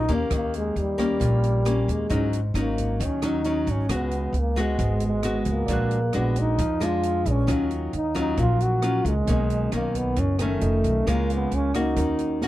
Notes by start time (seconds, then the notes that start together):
Already playing: A#2 D#4
0.08 D#2 A#3 C#4 G4, kick, closed hi-hat
0.13 A#3
0.30 D#2 D#3, kick, cross-stick, closed hi-hat
0.35 A#3
0.54 closed hi-hat
0.58 G#3
0.76 D#2 G3, closed hi-hat
0.98 A#3 C#4 G4, kick, cross-stick, closed hi-hat
1.20 A#1 A#2, kick, closed hi-hat
1.44 closed hi-hat
1.65 A#3 C#4 G4, cross-stick, closed hi-hat
1.88 D#2 G#3, kick, closed hi-hat
2.10 G#1 G#2 F#3 C#4 D#4, kick, closed hi-hat
2.33 closed hi-hat
2.54 G#1 F#3 C#4 D#4, cross-stick, closed hi-hat
2.60 A#3
2.78 kick, closed hi-hat
3.00 D#2 D#3, kick, closed hi-hat
3.05 C#4
3.22 F#3 C#4 D#4, cross-stick, closed hi-hat
3.27 D#4
3.44 F#3 C#4 D#4, closed hi-hat
3.67 G#1, kick, closed hi-hat
3.72 C#4
3.89 C#2 C#3 G#3 B3 F#4, kick, cross-stick, closed hi-hat
3.95 B3
4.11 closed hi-hat
4.33 C#2, closed hi-hat
4.39 A#3
4.56 G#3 B3 F#4, kick, cross-stick, closed hi-hat
4.61 G#3
4.79 G#1 G#2, kick, closed hi-hat
5.00 closed hi-hat
5.06 G#3
5.23 G#3 B3 F#4, cross-stick, closed hi-hat
5.45 C#2, kick, closed hi-hat
5.51 A#3
5.66 A#1 A#2 G#3 D4 F#4 G#4 D5, kick, closed hi-hat
5.71 B4 F#6
5.91 closed hi-hat
6.13 A#1 G#3 D4 F#4, cross-stick, closed hi-hat
6.18 B3
6.36 D#4, kick, closed hi-hat
6.58 F2 F3, kick, closed hi-hat
6.80 G#3 D4 F4, cross-stick, closed hi-hat
7.03 closed hi-hat
7.25 A#1 D4 G#4 B4 D5, kick, closed hi-hat
7.30 C#4
7.46 D#2 D#3 F#3 C#4 D#4 F4 C#5, kick, cross-stick, closed hi-hat
7.52 F5
7.71 closed hi-hat
7.93 D#2 D#4, closed hi-hat
8.15 F#3 C#4 D#4 F4, kick, cross-stick, closed hi-hat
8.37 A#1 A#2 F4, kick, closed hi-hat
8.60 F#4, closed hi-hat
8.82 F#3 C#4 F4, cross-stick, closed hi-hat
9.05 C#2 G#3, kick, closed hi-hat
9.25 B1 B2 D#3 A#3 B3 C#4 A#4, kick, closed hi-hat
9.29 C#4 D#5
9.50 closed hi-hat
9.72 B1 D#3 A#3 C#4, cross-stick, closed hi-hat
9.94 B3, kick, closed hi-hat
10.16 F#1 F#2 C#4, kick, closed hi-hat
10.39 D#3 A3 C#4, cross-stick, closed hi-hat
10.60 F1 C#4 F4 A4 D#5, closed hi-hat
10.84 B1, kick, closed hi-hat
11.05 C#2 C#3 G#3 A#3 C#4 F4 G#4 A#4, kick, cross-stick, closed hi-hat
11.10 A#3 F5
11.30 closed hi-hat
11.34 B3
11.51 C#2 C#4, closed hi-hat
11.74 A#3 C#4 D#4 F#4, kick, cross-stick, closed hi-hat
11.94 D#2 D#3 C#4 F#4 A#4, kick, closed hi-hat
11.99 D#5
12.19 closed hi-hat
12.41 A#3 C#4 F#4, snare